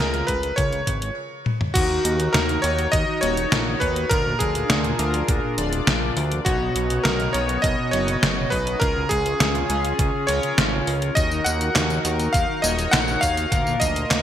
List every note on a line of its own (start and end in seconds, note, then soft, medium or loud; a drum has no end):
0.00 0.23 C#2 medium
0.00 1.15 F4 medium
0.00 1.15 G#4 medium
0.00 0.29 A#4 loud
0.00 1.13 C#5 medium
0.14 0.25 C#3 loud
0.14 closed hi-hat soft
0.27 0.52 C#2 medium
0.27 0.33 G#3 medium
0.27 0.55 B4 medium
0.27 kick medium
0.27 closed hi-hat medium
0.43 0.51 G#3 medium
0.43 closed hi-hat medium
0.56 0.82 C#2 loud
0.56 0.69 C#3 medium
0.56 1.12 C#5 medium
0.56 kick loud
0.56 closed hi-hat medium
0.73 0.84 C#3 loud
0.73 closed hi-hat soft
0.87 1.11 G#1 medium
0.87 0.98 C#3 medium
0.87 kick medium
0.87 closed hi-hat medium
1.02 1.09 G#3 medium
1.02 closed hi-hat medium
1.46 high tom medium
1.61 mid tom medium
1.74 1.99 D#2 loud
1.74 1.87 D#3 medium
1.74 4.08 D#4 medium
1.74 2.60 D#4 medium
1.74 2.35 F#4 medium
1.74 4.08 F#4 medium
1.74 2.60 F#4 medium
1.74 6.42 A#4 medium
1.74 2.60 A#4 medium
1.74 kick loud
1.74 closed hi-hat medium
1.74 crash loud
1.90 2.01 D#3 loud
2.05 2.29 D#2 medium
2.05 2.16 A#3 loud
2.05 closed hi-hat medium
2.20 2.27 D#3 medium
2.20 closed hi-hat medium
2.33 2.58 D#2 medium
2.33 2.42 D#4 medium
2.33 2.64 A#4 loud
2.33 snare loud
2.33 closed hi-hat medium
2.49 2.60 D#3 loud
2.49 closed hi-hat soft
2.62 2.87 D#2 medium
2.62 2.68 A#3 medium
2.62 3.19 D#4 medium
2.62 3.19 F#4 medium
2.62 3.19 A#4 loud
2.62 2.93 C#5 loud
2.62 closed hi-hat medium
2.78 2.86 A#3 medium
2.78 closed hi-hat medium
2.92 3.05 D#2 loud
2.92 3.04 D#3 medium
2.92 3.20 D#5 loud
2.92 kick loud
2.92 closed hi-hat medium
3.08 3.19 D#3 loud
3.21 3.46 D#1 loud
3.21 3.34 A#3 loud
3.21 4.07 D#4 loud
3.21 4.07 F#4 medium
3.21 3.82 C#5 loud
3.21 4.07 C#5 loud
3.21 closed hi-hat medium
3.37 3.45 D#3 medium
3.37 closed hi-hat medium
3.52 3.76 A#1 medium
3.52 3.59 D#4 medium
3.52 snare loud
3.52 closed hi-hat medium
3.67 3.78 D#3 loud
3.80 4.05 D#2 loud
3.80 3.86 A#3 medium
3.80 4.11 B4 loud
3.80 kick medium
3.80 open hi-hat medium
3.96 4.03 A#3 medium
3.96 closed hi-hat medium
4.09 4.35 D2 loud
4.09 4.22 A#2 medium
4.09 6.44 D4 medium
4.09 4.96 D4 medium
4.09 6.44 F4 medium
4.09 4.96 F4 medium
4.09 4.40 A#4 loud
4.09 4.96 A#4 medium
4.09 kick loud
4.09 closed hi-hat medium
4.26 4.37 A#2 loud
4.39 4.64 D2 loud
4.39 4.51 F3 loud
4.39 6.12 G#4 medium
4.39 kick medium
4.39 closed hi-hat medium
4.55 4.62 A#2 medium
4.55 closed hi-hat medium
4.70 4.93 D2 medium
4.70 4.77 A#3 medium
4.70 snare loud
4.70 closed hi-hat medium
4.84 4.95 A#2 loud
4.84 closed hi-hat soft
4.99 5.23 D2 loud
4.99 5.03 F3 medium
4.99 5.54 D4 loud
4.99 5.54 F4 medium
4.99 5.54 A#4 loud
4.99 closed hi-hat medium
5.14 5.21 F3 medium
5.14 closed hi-hat medium
5.28 5.40 D2 loud
5.28 5.39 A#2 medium
5.28 kick loud
5.28 closed hi-hat medium
5.43 5.54 A#2 loud
5.58 5.82 D1 loud
5.58 5.69 F3 loud
5.58 6.43 D4 loud
5.58 6.43 F4 medium
5.58 6.43 D5 loud
5.58 closed hi-hat medium
5.73 5.80 A#2 medium
5.73 closed hi-hat medium
5.87 6.11 A#1 medium
5.87 5.95 A#3 medium
5.87 snare loud
5.87 closed hi-hat medium
6.02 6.13 A#2 loud
6.17 6.40 D2 loud
6.17 6.21 F3 medium
6.17 open hi-hat medium
6.32 6.39 F3 medium
6.32 closed hi-hat medium
6.45 6.70 B1 loud
6.45 6.57 B2 medium
6.45 7.31 B3 medium
6.45 8.79 B3 medium
6.45 7.31 C#4 medium
6.45 7.31 D#4 medium
6.45 7.06 F#4 medium
6.45 7.31 F#4 medium
6.45 8.79 F#4 medium
6.45 7.31 C#5 medium
6.45 8.79 C#5 medium
6.45 8.79 D#5 medium
6.45 kick loud
6.45 closed hi-hat medium
6.61 6.72 B2 loud
6.75 6.99 B1 loud
6.75 6.87 F#3 loud
6.75 closed hi-hat medium
6.90 6.98 B2 medium
6.90 closed hi-hat medium
7.04 7.29 B1 medium
7.04 7.35 A#4 medium
7.04 snare loud
7.04 closed hi-hat medium
7.20 7.31 B2 loud
7.20 closed hi-hat soft
7.33 7.58 B1 medium
7.33 7.39 F#3 medium
7.33 7.90 B3 loud
7.33 7.90 C#4 medium
7.33 7.90 D#4 medium
7.33 7.90 F#4 medium
7.33 7.61 C#5 medium
7.33 7.90 C#5 loud
7.33 closed hi-hat medium
7.49 7.56 F#3 medium
7.49 closed hi-hat medium
7.62 7.76 B1 loud
7.62 7.75 B2 medium
7.62 7.93 D#5 loud
7.62 kick loud
7.62 closed hi-hat medium
7.79 7.90 B2 loud
7.91 8.17 F#1 loud
7.91 8.04 F#3 loud
7.91 8.78 B3 loud
7.91 8.78 C#4 medium
7.91 8.78 D#4 medium
7.91 8.78 F#4 medium
7.91 8.53 C#5 medium
7.91 8.78 D#5 loud
7.91 closed hi-hat medium
8.08 8.15 B2 medium
8.08 closed hi-hat medium
8.22 8.46 F#1 medium
8.22 8.30 B3 medium
8.22 snare loud
8.22 closed hi-hat medium
8.38 8.48 B2 loud
8.50 8.76 B1 loud
8.50 8.57 F#3 medium
8.50 8.81 B4 medium
8.50 kick medium
8.50 open hi-hat medium
8.67 8.74 F#3 medium
8.67 closed hi-hat medium
8.80 9.05 C#2 loud
8.80 8.92 C#3 medium
8.80 9.66 C#4 medium
8.80 11.14 C#4 medium
8.80 11.14 F4 medium
8.80 9.66 F4 medium
8.80 11.14 G#4 medium
8.80 9.66 G#4 medium
8.80 9.08 A#4 loud
8.80 kick loud
8.80 closed hi-hat medium
8.96 9.07 C#3 loud
9.09 9.35 C#2 medium
9.09 9.22 G#3 loud
9.09 10.31 G#4 loud
9.09 kick medium
9.09 closed hi-hat medium
9.26 9.33 C#3 medium
9.26 closed hi-hat medium
9.40 9.64 C#2 medium
9.40 9.48 C#4 medium
9.40 snare loud
9.40 closed hi-hat medium
9.55 9.66 C#3 loud
9.55 closed hi-hat soft
9.70 9.93 C#2 medium
9.70 9.74 G#3 medium
9.70 10.25 C#4 loud
9.70 10.25 F4 medium
9.70 10.25 G#4 loud
9.70 closed hi-hat medium
9.85 9.92 G#3 medium
9.85 closed hi-hat medium
9.99 10.11 C#2 loud
9.99 10.10 C#3 medium
9.99 kick loud
9.99 closed hi-hat medium
10.14 10.25 C#3 loud
10.27 10.40 C#2 loud
10.27 10.39 G#3 loud
10.27 11.13 C#4 loud
10.27 11.13 F4 medium
10.27 11.13 A#4 loud
10.27 11.19 C#5 loud
10.27 closed hi-hat medium
10.43 10.50 C#3 medium
10.43 closed hi-hat medium
10.58 10.82 G#1 loud
10.58 10.65 C#4 medium
10.58 snare loud
10.58 closed hi-hat medium
10.73 10.84 C#3 loud
10.87 11.11 C#2 medium
10.87 10.92 G#3 medium
10.87 open hi-hat medium
11.02 11.09 G#3 medium
11.02 closed hi-hat medium
11.15 11.40 D#2 loud
11.15 11.28 D#3 medium
11.15 12.01 D#4 medium
11.15 13.50 D#4 medium
11.15 12.01 F#4 medium
11.15 13.50 F#4 medium
11.15 12.01 A#4 medium
11.15 14.22 A#4 medium
11.15 11.43 D#5 loud
11.15 kick loud
11.15 closed hi-hat medium
11.15 tambourine soft
11.31 11.42 D#3 loud
11.31 tambourine soft
11.44 11.70 D#2 loud
11.44 11.57 A#3 loud
11.44 12.00 F#5 loud
11.44 closed hi-hat medium
11.44 tambourine medium
11.61 11.68 D#3 medium
11.61 closed hi-hat soft
11.61 tambourine soft
11.75 11.99 D#2 medium
11.75 11.83 D#4 medium
11.75 snare loud
11.75 clap medium
11.75 closed hi-hat medium
11.75 tambourine soft
11.90 12.01 D#3 loud
11.90 closed hi-hat soft
11.90 tambourine soft
12.05 12.29 D#2 medium
12.05 12.09 A#3 medium
12.05 12.60 D#4 medium
12.05 12.60 F#4 medium
12.05 12.60 A#4 loud
12.05 closed hi-hat medium
12.05 tambourine medium
12.19 12.27 A#3 medium
12.19 closed hi-hat medium
12.19 tambourine soft
12.33 12.46 D#2 loud
12.33 12.45 D#3 medium
12.33 12.61 F5 loud
12.33 kick loud
12.33 closed hi-hat medium
12.33 tambourine soft
12.49 12.60 D#3 loud
12.62 12.87 D#1 loud
12.62 12.75 A#3 loud
12.62 13.48 D#4 loud
12.62 13.48 F#4 medium
12.62 13.48 C#5 loud
12.62 12.93 D#5 loud
12.62 closed hi-hat medium
12.62 tambourine medium
12.78 12.86 D#3 medium
12.78 closed hi-hat soft
12.78 tambourine soft
12.91 13.17 A#1 medium
12.91 13.00 D#4 medium
12.91 13.23 F#5 loud
12.91 snare loud
12.91 clap medium
12.91 closed hi-hat medium
12.91 tambourine soft
13.08 13.19 D#3 loud
13.08 tambourine soft
13.21 13.46 D#2 loud
13.21 13.27 A#3 medium
13.21 13.82 F5 loud
13.21 kick medium
13.21 open hi-hat medium
13.21 tambourine medium
13.37 13.45 A#3 medium
13.37 closed hi-hat medium
13.37 tambourine soft
13.52 13.76 D2 loud
13.52 13.63 A#2 medium
13.52 14.22 A#3 medium
13.52 14.22 F4 medium
13.52 14.22 A#4 medium
13.52 kick loud
13.52 closed hi-hat medium
13.52 tambourine soft
13.67 13.78 A#2 loud
13.67 tambourine soft
13.80 14.05 D2 medium
13.80 13.92 F3 loud
13.80 14.22 D#5 loud
13.80 kick medium
13.80 closed hi-hat medium
13.80 tambourine medium
13.96 14.03 A#2 medium
13.96 closed hi-hat soft
13.96 tambourine soft
14.11 14.22 D2 medium
14.11 14.18 A#3 medium
14.11 snare loud
14.11 clap loud
14.11 closed hi-hat medium
14.11 tambourine soft